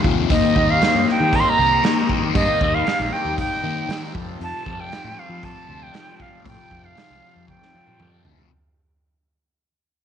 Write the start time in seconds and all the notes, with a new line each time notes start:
Already playing: F2
0.04 D#2 C3 F3, kick
0.29 D#2 D#3 G3 A#3 C4 D#4 A#4 D#5, kick, open hi-hat
0.56 D#2 A#3 D#4, kick
0.70 F5
0.81 D#3 A#3 D#4, snare, open hi-hat
0.95 G2
1.09 G5, snare
1.20 D#3
1.33 A#5, kick, open hi-hat
1.40 C6
1.49 A#5
1.57 C2 A#3 D#4
1.83 D#3 A#3 D#4, snare, open hi-hat
2.09 A#3 D#4, kick
2.35 G2 D#3 A#3 D#4 D#5, kick, open hi-hat
2.61 D#2 A#3 D#4, kick
2.75 F5
2.86 D#3 A#3 D#4, snare, open hi-hat
3.00 A#1
3.12 G5
3.25 D#2
3.38 G5, kick, open hi-hat
3.63 D#3 A#3 D#4
3.89 D#3 A#3 D#4, snare, open hi-hat
4.14 F2 C3 F3 G3 F4 A4, kick
4.39 F2 C3 F3, open hi-hat
4.43 A5
4.65 F2 C3 F3, kick
4.80 G5
4.90 F2 C3 F3, snare, open hi-hat
5.04 A2
5.19 F5
5.29 F3
5.43 A5, kick, open hi-hat
5.68 D2 C3 F3
5.83 G5
5.94 F2 C3 F3, snare, open hi-hat
6.20 C3 F3 F5, kick
6.44 F2 A2 C3 F3 G5, kick, open hi-hat
6.70 F2 C3 F3, kick
6.85 F5
6.96 F2 C3 F3, snare, open hi-hat
7.10 C2
7.36 F2
7.48 G5, kick, high tom
7.62 snare
7.73 C3 F3
7.87 mid tom
7.99 F2 C3 F3, mid tom
8.25 D2 C3 F3, floor tom
8.38 floor tom